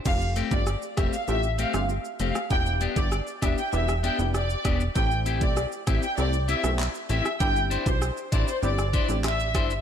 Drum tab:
CC |x---------------|----------------|----------------|----------------|
HH |--x---x---x---x-|--x---x---x---x-|--x---x---x---x-|--x---x---x---x-|
SH |xxxxxxxxxxxxxxxx|xxxxxxxxxxxxxxxx|xxxxxxxxxxxxxxxx|xxxxxxxxxxxxxxxx|
CP |----------------|----------------|------------x---|------------x---|
SD |----r-r----r---r|----r-r--r--r-r-|----r-r----r---r|----r----r--r-r-|
BD |o--o--o---------|o--o--o-------o-|o--o--o---------|o--o--o---o---o-|